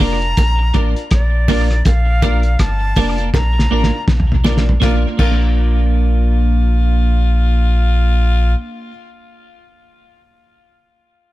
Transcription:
0.00 0.34 F1 medium
0.00 0.19 A#3 medium
0.00 0.19 D4 medium
0.00 0.24 D4 medium
0.00 0.24 F4 medium
0.00 0.19 F4 loud
0.00 0.24 A#4 medium
0.00 0.19 A#4 loud
0.00 0.24 D5 loud
0.00 0.86 A#5 loud
0.00 kick medium
0.00 high bongo medium
0.22 closed hi-hat soft
0.37 0.71 A#1 loud
0.37 kick loud
0.37 closed hi-hat loud
0.37 high bongo medium
0.59 muted clean electric guitar stroke soft
0.74 0.94 A1 loud
0.74 0.93 A#3 medium
0.74 0.98 D4 medium
0.74 0.93 D4 medium
0.74 0.98 F4 medium
0.74 0.93 F4 medium
0.74 0.98 A#4 medium
0.74 0.93 A#4 medium
0.74 0.98 D5 loud
0.74 kick medium
0.74 closed hi-hat medium
0.96 closed hi-hat soft
1.11 1.82 A#1 medium
1.11 1.87 D5 medium
1.11 kick loud
1.11 cross-stick loud
1.11 closed hi-hat medium
1.48 1.67 A#3 medium
1.48 1.72 D4 medium
1.48 1.68 D4 medium
1.48 1.72 F4 medium
1.48 1.68 F4 medium
1.48 1.72 A#4 medium
1.48 1.68 A#4 medium
1.48 1.72 D5 medium
1.48 kick medium
1.48 open hi-hat medium
1.48 low bongo medium
1.70 cross-stick medium
1.70 closed hi-hat soft
1.85 2.56 A#1 loud
1.85 2.61 F5 medium
1.85 kick loud
1.85 closed hi-hat medium
1.85 high bongo medium
2.22 2.41 A#3 medium
2.22 2.46 D4 medium
2.22 2.42 D4 medium
2.22 2.46 F4 medium
2.22 2.42 F4 medium
2.22 2.47 A#4 medium
2.22 2.42 A#4 medium
2.22 2.47 D5 medium
2.22 kick medium
2.22 closed hi-hat medium
2.22 high bongo medium
2.43 closed hi-hat soft
2.59 2.94 G1 medium
2.59 3.34 A5 medium
2.59 kick loud
2.59 cross-stick loud
2.59 closed hi-hat medium
2.96 3.30 F1 medium
2.96 3.15 A#3 medium
2.96 3.20 D4 medium
2.96 3.16 D4 medium
2.96 3.20 F4 medium
2.96 3.16 F4 medium
2.96 3.21 A#4 medium
2.96 3.16 A#4 medium
2.96 3.21 D5 loud
2.96 kick medium
2.96 open hi-hat medium
2.96 high bongo medium
2.96 low bongo medium
3.18 3.30 A#3 soft
3.18 3.29 D4 medium
3.18 3.29 F4 medium
3.18 3.29 A#4 medium
3.18 closed hi-hat soft
3.34 3.68 A#1 loud
3.34 4.04 A#5 medium
3.34 kick loud
3.34 snare medium
3.34 high bongo medium
3.59 snare medium
3.71 3.91 A1 medium
3.71 3.90 A#3 medium
3.71 3.94 D4 medium
3.71 3.90 D4 medium
3.71 3.95 F4 medium
3.71 3.90 F4 medium
3.71 3.95 A#4 medium
3.71 3.90 A#4 medium
3.71 3.95 D5 loud
3.84 snare medium
4.08 4.78 A#1 medium
4.08 kick loud
4.08 snare medium
4.20 mid tom medium
4.32 mid tom medium
4.44 4.63 A#3 medium
4.44 4.64 D4 medium
4.44 4.69 D4 medium
4.44 4.64 F4 medium
4.44 4.69 F4 medium
4.44 4.64 A#4 medium
4.44 4.69 A#4 medium
4.44 4.69 D5 loud
4.44 snare medium
4.44 low bongo medium
4.57 snare medium
4.69 floor tom medium
4.80 5.05 A#1 loud
4.80 5.17 A#3 medium
4.80 5.19 D4 medium
4.80 5.05 D4 medium
4.80 5.05 F4 medium
4.80 5.20 F4 medium
4.80 5.06 A#4 medium
4.80 5.06 D5 medium
4.80 kick loud
4.80 snare medium
4.80 high bongo medium
4.85 5.22 A#4 medium
5.17 8.55 A#1 loud
5.17 8.91 A#3 medium
5.17 8.92 D4 medium
5.17 8.89 D4 medium
5.17 8.54 F4 medium
5.17 8.89 F4 medium
5.17 8.94 F4 medium
5.17 8.89 A#4 medium
5.17 8.89 D5 medium
5.17 kick medium
5.17 crash medium
5.17 high bongo medium
5.22 8.95 A#4 medium

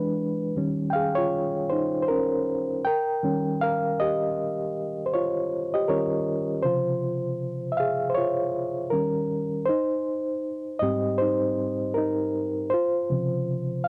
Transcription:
0.00 0.53 E3 medium
0.00 0.53 G#3 soft
0.00 0.38 D4 medium
0.00 0.36 B4 medium
0.57 1.10 D#3 medium
0.57 1.10 G3 medium
0.57 1.10 C#4 medium
0.90 1.17 F5 medium
0.90 0.94 G5 medium
0.96 1.16 G#4 medium
1.15 1.67 F4 medium
1.15 1.71 C#5 medium
1.70 2.01 D#4 medium
1.70 2.01 C5 medium
2.02 2.08 C5 medium
2.08 2.81 C#4 medium
2.08 2.86 A#4 medium
2.85 3.57 A#4 medium
2.85 3.63 G5 loud
3.23 5.88 D#3 medium
3.23 5.88 G3 soft
3.23 5.89 C#4 medium
3.61 3.97 A#4 medium
3.61 3.96 F5 loud
4.00 5.04 G4 medium
4.00 5.10 D#5 loud
5.06 5.12 C5 medium
5.14 5.70 F4 medium
5.14 5.70 C#5 medium
5.74 5.88 G4 medium
5.74 5.89 D#5 medium
5.88 6.60 D#3 medium
5.88 6.61 G3 soft
5.88 6.61 C#4 medium
5.88 6.46 F4 medium
5.88 6.60 A#4 medium
5.88 6.45 C#5 medium
6.62 8.88 C3 medium
6.62 8.88 C#3 soft
6.62 8.88 F3 soft
6.62 7.69 F4 medium
6.62 7.67 C5 medium
7.72 7.78 E5 medium
7.77 8.09 G#4 medium
7.77 8.11 F5 medium
8.10 8.15 C5 medium
8.14 8.89 F4 medium
8.14 8.93 C#5 loud
8.90 9.64 D#3 medium
8.90 9.64 G3 soft
8.90 9.65 C#4 medium
8.90 9.69 A#4 medium
9.66 10.78 D#4 medium
9.66 10.84 C5 medium
10.79 12.67 G#2 medium
10.79 12.68 G3 soft
10.79 12.68 C4 medium
10.79 11.17 G4 medium
10.79 11.20 D#5 medium
11.18 11.92 D#4 medium
11.18 11.97 C5 medium
11.94 12.68 D#4 medium
11.94 12.73 A#4 medium
12.70 13.82 F4 medium
12.70 13.88 C5 medium
13.10 13.88 C3 medium
13.10 13.88 C#3 medium
13.10 13.88 F3 medium
13.84 13.88 F5 medium

